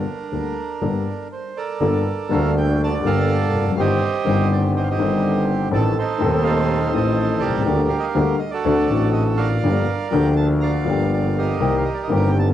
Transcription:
Already playing: bandoneon D4 A#4
0.32 double bass D2, grand piano D2 D3 G3 A#3 D4 A4
0.82 grand piano G1 G2 G3 A#3 D4 A4, double bass G1
1.32 bandoneon C5
1.57 bandoneon A4 A#4 D5
1.81 grand piano G1 G2 G3 A#3 D4 A4, double bass G1
2.29 double bass D2, grand piano D2 D3 G3 A#3 D4, bandoneon F5
2.33 grand piano A4
2.57 bandoneon G5
2.83 bandoneon D5 A5
3.03 double bass G1, grand piano G1 G2 G3 A#3 D4, bandoneon A4 F5
3.07 grand piano G4, bandoneon A#4
3.53 double bass F1
3.60 grand piano E2
3.66 grand piano F2
3.71 grand piano F#2
3.77 double bass G1, grand piano G1 G2 D#3 G3 C4 G4, bandoneon G4 C5 D#5
4.24 grand piano G1 G2 D#3 G3 C4, double bass G1
4.28 grand piano G4
4.52 bandoneon D5
4.76 bandoneon G4 C5 D#5
4.83 bandoneon F5
4.90 bandoneon G4 C5 D#5
4.97 grand piano G1 G2 D#3 G3 C4 G4, double bass G1
5.71 grand piano A1 A2 D#3 A3 C4 A4, double bass A1, bandoneon A4 D5
5.99 bandoneon D#4 A4 C5
6.18 grand piano D#1 D#2 D#3 A3 C4
6.22 double bass D#2, grand piano A4
6.44 bandoneon A4 C5 F5
6.92 grand piano A1 A2 D#3 A3 C4 A4, double bass A1, bandoneon A4 C5 D#5
7.39 double bass C2, bandoneon G4 A#4 D5
7.48 grand piano B1
7.55 grand piano C2
7.61 grand piano C#2
7.66 grand piano D2 D3 G3 A#3 G4, double bass D2
7.89 bandoneon F5
8.00 bandoneon D#5 F5
8.15 grand piano D2 D3 G3 A#3 G4, double bass D2
8.39 bandoneon D#5
8.51 bandoneon F#4 A4 D5
8.65 double bass D2, grand piano D2 D3 A3 C4 F#4
8.88 double bass A1, grand piano A1 A2 D3 A3 C4
8.92 grand piano F#4
9.13 bandoneon D#5
9.37 bandoneon A#4 D5 F5
9.63 double bass G1, grand piano G1 G2 F3 A#3 D4 G4
10.11 double bass D2, grand piano D2 D3 F3 A#3 D4 G4, bandoneon G5
10.36 bandoneon A5
10.60 bandoneon D5 F5 A#5
10.84 double bass G1, grand piano G1 G2 F3 A#3 D4
10.89 grand piano G4
11.13 bandoneon D5
11.38 bandoneon G4 A#4 D#5
11.59 double bass C2, grand piano C2 C3 D#3 A#3 C4 G4
11.77 bandoneon F5
11.85 bandoneon D#5
11.94 bandoneon D5
12.03 bandoneon D#5
12.08 double bass G1, grand piano G1 G2 D#3 A#3 C4
12.12 grand piano G4
12.16 bandoneon G5
12.39 bandoneon A5

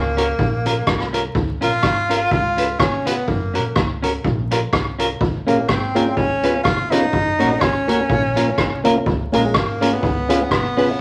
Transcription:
Already playing: upright bass C#2, tenor saxophone A#3
0.17 clean electric guitar C#4 F#4 A#4, closed hi-hat
0.39 upright bass A#1, kick
0.66 clean electric guitar C#4 F4 A#4, closed hi-hat
0.87 upright bass C2, kick, cross-stick
1.00 cross-stick
1.13 clean electric guitar C#4 F4 A#4, closed hi-hat
1.35 upright bass C#2, kick
1.61 upright bass A#1, clean electric guitar C#4 F4 A#4, tenor saxophone F4, closed hi-hat
1.83 upright bass G#1, kick, cross-stick
2.09 clean electric guitar C#4 F4 A#4, closed hi-hat
2.31 upright bass C#2, tenor saxophone F4, kick
2.57 clean electric guitar C#4 F4 B4, closed hi-hat
2.79 upright bass F1, tenor saxophone C#4, kick, cross-stick
3.06 tenor saxophone B3, clean electric guitar C#4 F4 B4, closed hi-hat
3.28 upright bass F#1, tenor saxophone A#3, kick
3.54 upright bass A#1, clean electric guitar C#4 F#4 A#4, closed hi-hat
3.76 upright bass C#2, kick, cross-stick
4.02 clean electric guitar C#4 F#4 A#4, closed hi-hat
4.24 upright bass A#1, kick
4.51 clean electric guitar C#4 F4 A#4, closed hi-hat
4.73 upright bass C2, kick, cross-stick
4.99 clean electric guitar C#4 F4 A#4, closed hi-hat
5.21 upright bass C#2, kick
5.47 upright bass A#1, tonewheel organ A#3 C#4 F4 G#4, tenor saxophone A#3, clean electric guitar C#4 F4 A#4, closed hi-hat
5.68 upright bass G#1, tenor saxophone C4, kick, cross-stick
5.95 tonewheel organ A#3 C#4 F4 G#4, clean electric guitar C#4 F4 A#4, closed hi-hat
6.16 upright bass C#2, tenor saxophone C#4, tonewheel organ F4 G#4, kick
6.43 tonewheel organ B3 C#4 F4 G#4, clean electric guitar C#4 F4 B4, closed hi-hat
6.64 upright bass F1, tenor saxophone F4, kick, cross-stick
6.91 tonewheel organ B3 C#4 F4 G#4, clean electric guitar C#4 F4 B4, tenor saxophone D#4, closed hi-hat
7.13 upright bass F#1, kick
7.39 upright bass A#1, tonewheel organ A#3 C#4 F#4 A#4, clean electric guitar C#4 F#4 A#4, closed hi-hat
7.60 tenor saxophone C#4, kick, cross-stick
7.88 tonewheel organ A#3 C#4 F#4 A#4, clean electric guitar C#4 F#4 A#4, closed hi-hat
8.09 upright bass A#1, tonewheel organ F4 A#4, kick
8.36 tonewheel organ A#3 C#4 F4 A#4, clean electric guitar C#4 F4 A#4, closed hi-hat
8.58 upright bass C2, kick, cross-stick
8.84 tonewheel organ A#3 C#4 F4 A#4, clean electric guitar C#4 F4 A#4, closed hi-hat
9.06 upright bass C#2, kick
9.32 upright bass A#1, tenor saxophone G#3, tonewheel organ A#3 C#4 F4 G#4, clean electric guitar C#4 F4 A#4, closed hi-hat
9.54 upright bass G#1, tenor saxophone A#3, kick, cross-stick
9.81 tonewheel organ A#3 C#4 F4 G#4, clean electric guitar C#4 F4 A#4, closed hi-hat
9.93 tenor saxophone B3
10.02 upright bass C#2, tonewheel organ F4 G#4, kick
10.29 tonewheel organ B3 C#4 F4 G#4, clean electric guitar C#4 F4 B4, closed hi-hat
10.51 upright bass F1, tenor saxophone B3, kick, cross-stick
10.77 tonewheel organ B3 C#4 F4 G#4, clean electric guitar C#4 F4 B4, open hi-hat

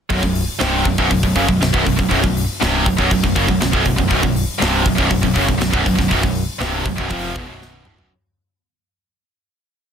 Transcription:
0.10 picked electric bass B0, distorted electric guitar B1 F#2, kick, open hi-hat
0.23 picked electric bass B0, distorted electric guitar B1 F#2, kick
0.35 open hi-hat
0.60 picked electric bass C1, distorted electric guitar C2 G2 C3, snare, open hi-hat
0.85 picked electric bass B0, distorted electric guitar B1 F#2, kick, open hi-hat
0.98 picked electric bass B0, distorted electric guitar B1 F#2, kick
1.11 picked electric bass B0, distorted electric guitar B1 F#2, kick, open hi-hat
1.23 picked electric bass B0, distorted electric guitar B1 F#2, kick
1.36 picked electric bass F#1, distorted electric guitar F#2 C#3, kick, open hi-hat
1.48 picked electric bass B0, distorted electric guitar B1 F#2, kick
1.61 picked electric bass B0, distorted electric guitar B1 F#2, snare, open hi-hat
1.73 picked electric bass B0, distorted electric guitar B1 F#2, kick
1.86 picked electric bass B0, distorted electric guitar B1 F#2, kick, open hi-hat
1.99 picked electric bass B0, distorted electric guitar B1 F#2, kick
2.11 picked electric bass B0, distorted electric guitar B1 F#2, kick, open hi-hat
2.23 picked electric bass B0, distorted electric guitar B1 F#2, kick
2.37 open hi-hat
2.61 picked electric bass C1, distorted electric guitar C2 G2 C3, snare, open hi-hat
2.86 picked electric bass B0, distorted electric guitar B1 F#2, kick, open hi-hat
2.98 picked electric bass B0, distorted electric guitar B1 F#2, kick
3.11 picked electric bass B0, distorted electric guitar B1 F#2, kick, open hi-hat
3.23 picked electric bass B0, distorted electric guitar B1 F#2, kick
3.35 picked electric bass F#1, distorted electric guitar F#2 C#3, kick, open hi-hat
3.48 picked electric bass B0, distorted electric guitar B1 F#2, kick
3.61 picked electric bass B0, distorted electric guitar B1 F#2, snare, open hi-hat
3.73 picked electric bass B0, distorted electric guitar B1 F#2, kick
3.84 picked electric bass B0, distorted electric guitar B1 F#2, kick, open hi-hat
3.98 picked electric bass B0, distorted electric guitar B1 F#2, kick
4.10 picked electric bass B0, distorted electric guitar B1 F#2, kick, open hi-hat
4.23 picked electric bass B0, distorted electric guitar B1 F#2, kick
4.36 open hi-hat
4.60 picked electric bass C1, distorted electric guitar C2 G2 C3, snare
4.85 picked electric bass B0, distorted electric guitar B1 F#2, kick, open hi-hat
4.98 picked electric bass B0, distorted electric guitar B1 F#2, kick
5.10 picked electric bass B0, distorted electric guitar B1 F#2, kick, open hi-hat
5.23 picked electric bass B0, distorted electric guitar B1 F#2, kick
5.35 picked electric bass F#1, distorted electric guitar F#2 C#3, kick, open hi-hat
5.48 picked electric bass B0, distorted electric guitar B1 F#2, kick
5.60 picked electric bass B0, distorted electric guitar B1 F#2, snare, open hi-hat
5.72 picked electric bass B0, distorted electric guitar B1 F#2, kick
5.81 distorted electric guitar B1 F#2
5.86 picked electric bass B0, distorted electric guitar B1 F#2, kick, open hi-hat
5.95 picked electric bass B0, distorted electric guitar B1 F#2, kick
6.00 distorted electric guitar F#2, snare
6.08 picked electric bass B0, distorted electric guitar B1 F#2, kick, open hi-hat
6.12 distorted electric guitar B1 F#2
6.23 picked electric bass B0, distorted electric guitar B1 F#2, kick
6.35 open hi-hat
6.60 picked electric bass C1, distorted electric guitar C2 G2 C3, snare, open hi-hat
6.85 picked electric bass B0, distorted electric guitar B1 F#2, kick, open hi-hat
6.98 picked electric bass B0, distorted electric guitar B1 F#2, kick
7.07 picked electric bass F1, distorted electric guitar F2 C3 F3, open hi-hat
7.11 distorted electric guitar F2 C3 F3, kick
7.35 picked electric bass E1, distorted electric guitar E2 B2, kick
7.48 picked electric bass B0, distorted electric guitar B1 F#2 B2
7.62 snare
7.85 picked electric bass D1, distorted electric guitar D2 A2, mid tom
7.98 picked electric bass B0, distorted electric guitar B1 F#2, floor tom

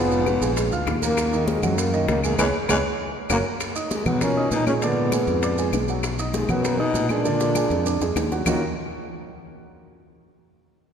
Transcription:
Already playing: fingered electric bass F1, baritone saxophone G#2, grand piano F3 F4 F5, trombone B3
0.11 high bongo, high conga, maracas
0.26 grand piano B3 B4 B5, high bongo, high conga, claves, maracas
0.41 fingered electric bass A#1, grand piano G#3 G#4 G#5, high bongo, maracas
0.57 high bongo, high conga, maracas
0.71 fingered electric bass D2, grand piano F4 F5 F6, high bongo, high conga, maracas
0.87 fingered electric bass D#2, high bongo, low bongo, high conga, claves, maracas
1.02 baritone saxophone F#2, grand piano A#3 A#4 A#5, trombone A#3, high conga, maracas
1.17 high bongo, high conga, claves, maracas
1.32 grand piano D#3 D#4 D#5, high conga, maracas
1.48 baritone saxophone F2, trombone G#3, high bongo, high conga, maracas
1.62 fingered electric bass F#2, grand piano F#3 F#4 F#5, high conga, low conga, claves, maracas
1.78 baritone saxophone F#2, trombone A#3, high bongo, high conga, maracas
1.93 grand piano D#3 D#4 D#5, high conga, maracas
2.08 fingered electric bass C#2, baritone saxophone F#2, trombone A#3, high bongo, low bongo, high conga, maracas
2.24 baritone saxophone E2, grand piano G#3 G#4 G#5, trombone A#3, high conga, claves, maracas
2.38 fingered electric bass C#2, baritone saxophone E2, trombone G#3, grand piano G#4 B4 C#5, low bongo, high conga, claves, maracas
2.69 fingered electric bass C#2, baritone saxophone E2, trombone G#3, grand piano G#4 B4 C#5, low bongo, high conga, claves, maracas
3.30 fingered electric bass F#1, baritone saxophone F#2, trombone A#3, grand piano F#4 A#4 C#5, low bongo, high conga, claves, maracas
3.60 high bongo, high conga, claves, maracas
3.75 grand piano D#4 D#5 D#6, high conga, maracas
3.91 baritone saxophone D#2, trombone G#3, high bongo, high conga, maracas
4.06 baritone saxophone G#2, fingered electric bass B2, grand piano F#3 F#4 F#5, trombone B3, high bongo, high conga, low conga, claves, maracas
4.21 baritone saxophone A#2, grand piano A#3 A#4 A#5, trombone C#4, high bongo, high conga, low conga, maracas
4.37 grand piano D#4 D#5 D#6, high bongo, high conga
4.51 fingered electric bass A#2, baritone saxophone B2, trombone D#4, high bongo, low bongo, high conga, maracas
4.67 baritone saxophone A#2, grand piano G#3 G#4 G#5, trombone C#4, high bongo, high conga, claves, maracas
4.82 baritone saxophone G#2, grand piano D3 D4 D5, trombone B3, high bongo, high conga, maracas
4.97 high conga
5.12 grand piano G#3 G#4 G#5, high bongo, high conga, claves, maracas
5.27 fingered electric bass F2, high bongo, maracas
5.43 grand piano D4 D5 D6, high bongo, high conga, maracas
5.58 grand piano G#3 G#4 G#5, high bongo, high conga, maracas
5.72 fingered electric bass B1, high bongo, low bongo, high conga, claves, maracas
5.88 grand piano F#3 F#4 F#5, high bongo, high conga, maracas
6.03 high bongo, high conga, claves, maracas
6.19 grand piano D#4 D#5 D#6, high conga, maracas
6.34 baritone saxophone D#2, trombone G#3, high bongo, high conga, maracas
6.49 baritone saxophone F#2, fingered electric bass B2, grand piano F#3 F#4 F#5, trombone B3, high bongo, high conga, low conga, claves, maracas
6.64 grand piano A#3 A#4 A#5, high bongo, maracas
6.79 baritone saxophone B2, grand piano D#4 D#5 D#6, trombone D#4, high bongo, high conga
6.94 fingered electric bass A#2, high bongo, low bongo, high conga, maracas
7.09 baritone saxophone A#2, grand piano G#3 G#4 G#5, trombone D4, high bongo, high conga, claves, maracas
7.25 grand piano D3 D4 D5, high bongo, high conga, maracas
7.40 high bongo, high conga, maracas
7.55 grand piano G#3 G#4 G#5, high conga, claves, maracas
7.70 fingered electric bass F2, low bongo, maracas
7.86 grand piano D4 D5 D6, low bongo, high conga, maracas
8.01 fingered electric bass F2, grand piano G#3 G#4 G#5, low bongo, high conga, maracas
8.16 fingered electric bass D#2, low bongo, high conga, claves, maracas
8.31 grand piano F#3 F#4 F#5, low bongo, high conga, maracas
8.46 fingered electric bass D#2, baritone saxophone A#2, grand piano D#3 A#3 C#4 D#4 F4 F#4, trombone D#4, low bongo, low conga, claves, maracas

